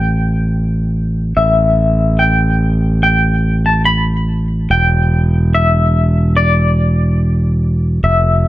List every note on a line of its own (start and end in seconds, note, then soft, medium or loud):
0.00 1.33 A1 medium
0.00 1.42 G5 medium
1.37 4.67 A1 medium
1.37 2.23 E5 medium
2.19 3.02 G5 medium
3.03 3.65 G5 medium
3.66 3.85 A5 medium
3.85 4.45 B5 medium
4.70 8.00 E1 medium
4.70 5.54 G5 medium
5.54 6.36 E5 medium
6.37 8.04 D5 medium
8.04 8.48 F1 medium
8.04 8.48 E5 medium